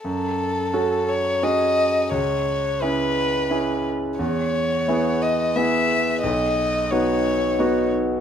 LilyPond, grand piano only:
\new Staff \with { instrumentName = "Grand piano" } { \time 3/4 \key fis \dorian \tempo 4 = 88 fis,4 <cis' fis' a'>4 <cis' fis' gis'>4 | cis,4 <cis' e' gis'>4 <cis' e' gis'>4 | e,4 <b e' gis'>4 <b e' gis'>4 | b,,4 <b dis' fis'>4 <b dis' fis'>4 | }